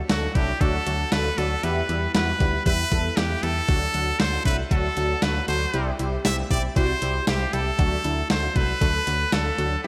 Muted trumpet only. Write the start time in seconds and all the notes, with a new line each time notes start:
0.10 F#4
0.35 G4
0.61 A4
1.12 B4
1.38 A4
1.64 B4
2.15 B4
2.66 B4
3.17 G4
3.43 A4
4.20 C5
4.46 B4
4.71 A4
5.22 B4
5.48 C5
6.25 E5
6.51 D5
6.77 C5
7.28 G4
7.53 A4
8.30 C5
8.56 B4
9.33 A4